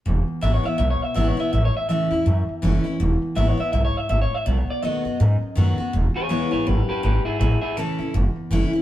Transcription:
0.06 E1 E2
0.28 muted upright bass stroke
0.41 G#1 E3 G#3 B3 E4 E5
0.54 C#5
0.63 B3 E4 E5, muted upright bass stroke
0.78 B1 B2 E5
0.90 C#5
1.01 E5, muted upright bass stroke
1.14 G#1 E3 G#3 B3 E4 E5
1.28 C#5
1.37 B3 E4 E5
1.53 A1 A2 E5
1.65 C#5
1.75 E5, muted upright bass stroke
1.89 C#2 E3 A3 C#4 E4 E5
2.11 E2 C#4 E4
2.26 E2 F#2
2.49 muted upright bass stroke
2.62 F#1 E3 A3 C#4 E4
2.84 C#4 E4, muted upright bass stroke
3.00 E1 E2
3.22 muted upright bass stroke
3.35 G#1 E3 G#3 B3 E4 E5
3.48 C#5
3.57 B3 E4 E5
3.72 B1 G#2 E5
3.85 C#5
3.95 E5, muted upright bass stroke
4.09 G#1 A2 E5
4.22 C#5
4.32 E5, muted upright bass stroke
4.46 B1 B2 D5
4.58 C#5
4.69 D5, muted upright bass stroke
4.82 D#2 D#3 A3 B3 F#4 D#5
5.05 F#2 B3 F#4
5.20 F#2 G#2
5.42 muted upright bass stroke
5.55 F#2 D#3 A3 B3 F#4
5.78 B3 F#4, muted upright bass stroke
5.93 E1 E2
6.16 G#4 C#5, muted upright bass stroke
6.29 E1 E3 G#3 B3 E4 G#4 C#5
6.51 G#1 B3 E4 G#4 C#5
6.66 G#1 F#2 G4 B4
6.89 G4 B4, muted upright bass stroke
7.03 G#1 G#2 G4 B4
7.25 E4 G#4, muted upright bass stroke
7.39 A1 A2 E4 G#4
7.62 E4 G#4, muted upright bass stroke
7.77 C#2 E3 A3 C#4 E4 A4
7.99 C#2 C#4 E4
8.14 F#1 E2
8.36 muted upright bass stroke
8.50 F#1 E3 A3 C#4 E4
8.72 C#4 E4, muted upright bass stroke

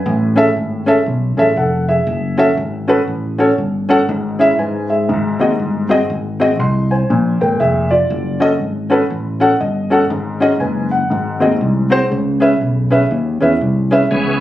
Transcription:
Already playing: B4 G#5
0.06 A1 A2
0.36 C#4 G#4 A4 E5
0.56 G#1
0.86 C#4 G#4 A4 E5
1.06 B1
1.37 A1 C#4 G#4 A4 E5
1.56 F1 A4 F#5
1.89 G#4 E5
2.07 F#1
2.38 C#4 F#4 A4 E5
2.57 G#1
2.88 C#4 F#4 A4 B4
3.08 A1
3.38 C#4 F#4 A4 C#5
3.58 G1
3.89 C#4 F#4 A4 F#5
4.09 G#1 G#2
4.39 C#4 E4 G#4 E5
4.59 G#2 B4 G#5
4.90 G#4 E5
5.09 G#1 G#2
5.39 D#2 C4 F#4 G#4 D#5
5.60 G1
5.89 C4 F#4 G#4 D#5
6.10 G#1
6.40 C4 F#4 G#4 D#5
6.60 C2 D#5 C6
6.91 C5 G#5
7.10 A#1 A#2
7.41 G#1 A#4 G5
7.60 F1 G#4 E5
7.91 F4 D5
8.10 F#1
8.40 C#4 F#4 A4 D#5
8.60 G#1
8.90 C#4 F#4 A4 B4
9.10 A1
9.40 C#4 F#4 A4 F#5
9.60 G1 D#5
9.90 C#4 F#4 A4 F#5
10.10 G#1 G#2
10.40 C#4 F#4 G#4 D#5
10.60 F#1 B4 G#5
10.91 F#5
11.10 G#1 G#2
11.40 D#2 C4 F#4 G#4 D#5
11.61 C2
11.90 C4 F#4 G#4 C5
12.10 C#2 C#3
12.40 C#4 G#4 B4 E5
12.61 B1
12.90 C#4 G#4 B4 E5
13.11 D#2
13.40 E2 C#4 G#4 B4 E5
13.61 C2
13.91 C#4 G#4 B4 E5
14.11 C#2 C#3 E3 B3 C#4 G#4

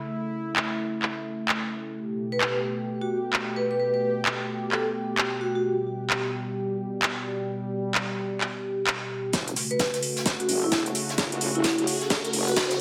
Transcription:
Already playing: C#3 A3 E4
0.56 clap
1.02 clap
1.49 clap
1.95 B2 G4
2.32 B4
2.41 B4, clap
3.01 F#4
3.33 clap
3.56 B4
3.71 B4
3.80 B4
3.94 B4
4.25 clap
4.72 A4, clap
5.18 clap
5.41 F#4
5.55 F#4
5.64 G3
6.10 clap
7.02 clap
7.95 clap
8.41 clap
8.87 clap
9.33 F#1 C#3 A3 F#4, kick, snare, closed hi-hat, riser, shaker
9.47 closed hi-hat
9.56 snare, open hi-hat, shaker
9.71 B4, closed hi-hat
9.79 B4, kick, snare, closed hi-hat, shaker
9.94 snare, closed hi-hat
10.03 open hi-hat, shaker
10.17 snare, closed hi-hat
10.26 kick, snare, closed hi-hat, shaker
10.40 F#4, closed hi-hat
10.49 F#1, open hi-hat, shaker
10.63 E4
10.72 E1, kick, snare, closed hi-hat, shaker
10.86 closed hi-hat
10.95 open hi-hat, shaker
11.09 snare, closed hi-hat
11.18 F#1, kick, snare, closed hi-hat, shaker
11.32 closed hi-hat
11.41 open hi-hat, shaker
11.55 F#1 E4, closed hi-hat
11.64 E4, kick, snare, closed hi-hat, shaker
11.78 closed hi-hat
11.87 open hi-hat, shaker
12.01 snare, closed hi-hat
12.10 kick, snare, closed hi-hat, shaker
12.25 closed hi-hat
12.33 F#1, open hi-hat, shaker
12.48 F#4, closed hi-hat
12.56 E1 F#4, kick, snare, closed hi-hat, shaker
12.71 snare, closed hi-hat

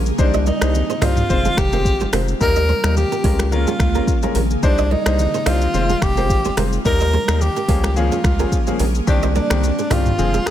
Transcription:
Already playing: A#1 C#3 A#3 G#4
0.06 shaker
0.18 C2 D#3 G3 C4 D4 D#4 C5, kick, shaker
0.34 C5 D#5, shaker
0.46 D#4 A#4 D5, high conga, shaker
0.61 C2 G3 D4 D#4 C5, finger snap, cross-stick, high conga, shaker
0.75 low conga, shaker
0.90 G#4 C5, shaker
1.01 C2 G3 D4 D#4 F4 C5 D#5, finger snap, cross-stick, mid tom, open hi-hat, high conga, shaker
1.17 mid tom, shaker
1.29 F1 C3 G#3 C4 F4 C5, kick, low conga, shaker
1.45 F4 G#4, high conga, shaker
1.57 F1 G4, finger snap, kick, cross-stick, high conga, shaker
1.72 G#3 C4 F4 G4 A#4 C5, shaker
1.85 G#1, kick, shaker
2.00 G#4 C5, high conga, shaker
2.13 F1 G#3 C4 F4 G4 A#4 C5, finger snap, cross-stick, open hi-hat, high conga, low conga, shaker
2.28 shaker
2.40 D#2 G3 A#3 D#4 A#4, kick, shaker
2.56 C5 D#5, shaker
2.69 G#4 C5, high conga
2.83 D#2 G3 A#3 D#4 A#4, finger snap, cross-stick, high conga, shaker
2.97 G4, low conga, shaker
3.12 G4 A#4, shaker
3.24 C#2 C#3 G#3 C#4 F4 G#4 A#4 C#5, kick, open hi-hat, high conga
3.39 finger snap, cross-stick, shaker
3.52 G#3 C#4 F4 A#4, low conga, shaker
3.67 F4 G#4, high conga, shaker
3.80 C#2, finger snap, kick, cross-stick, high conga, shaker
3.95 G#3 C#4 F4 G4 A#4, shaker
4.07 kick, shaker
4.22 G#3 C#4 F4 G#4 A#4 C5, high conga, shaker
4.35 A#1 G4 A#4, open hi-hat, high conga, low conga, shaker
4.50 shaker
4.63 C2 D#3 G3 C4 D4 D#4 C5, kick, shaker
4.78 C5 D#5, shaker
4.91 D#4 A#4 D5, high conga
5.06 C2 G3 D4 D#4 C5, finger snap, cross-stick, high conga, shaker
5.19 low conga, shaker
5.34 G#4 C5, shaker
5.46 C2 G3 D4 D#4 F4 C5 D#5, finger snap, cross-stick, open hi-hat, high conga
5.61 shaker
5.74 F1 C3 G#3 C4 F4 C5, low conga, shaker
5.89 F4 G#4, high conga, shaker
6.02 F1 G4, finger snap, kick, cross-stick, high conga, shaker
6.17 G#3 C4 F4 G4 A#4 C5, shaker
6.30 G#1, kick, shaker
6.45 G#4 C5, high conga, shaker
6.57 F1 G#3 C4 F4 G4 A#4 C5, finger snap, cross-stick, open hi-hat, high conga, low conga, shaker
6.73 shaker
6.85 D#2 G3 A#3 D#4 A#4, kick, shaker
7.00 C5 D#5, shaker
7.13 G#4 C5, high conga
7.28 D#2 G3 A#3 D#4 A#4, finger snap, cross-stick, high conga, shaker
7.41 G4, low conga, shaker
7.56 G4 A#4, shaker
7.68 C#2 C#3 F3 A#3 C#4 G#4 A#4 C#5, kick, open hi-hat, high conga
7.83 finger snap, cross-stick, shaker
7.96 F3 A#3 C#4 F4 G#4, low conga, shaker
8.12 F4 G#4, high conga, shaker
8.24 C#2, finger snap, kick, cross-stick, high conga, shaker
8.39 F3 A#3 C#4 G4 G#4 A#4, shaker
8.52 kick, shaker
8.67 F3 A#3 C#4 G#4 C5, high conga, shaker
8.79 A#1 G4 A#4, open hi-hat, high conga, low conga, shaker
8.95 shaker
9.07 C2 C3 D#3 C4 D4 G4, kick, shaker
9.22 C5 D#5, shaker
9.35 D4 A#4 D5, high conga, shaker
9.50 C2 D#3 C4 D4 G4, finger snap, cross-stick, high conga, shaker
9.63 low conga, shaker
9.79 G#4 C5, shaker
9.90 C2 D#3 C4 D4 F4 G4 C5 D#5, finger snap, cross-stick, mid tom, open hi-hat, high conga, shaker
10.05 mid tom, shaker
10.18 F1 F3 G#3 C4 F4 G#4, low conga, shaker
10.34 F4 G#4, high conga, shaker
10.46 G#4, finger snap, cross-stick, high conga, shaker

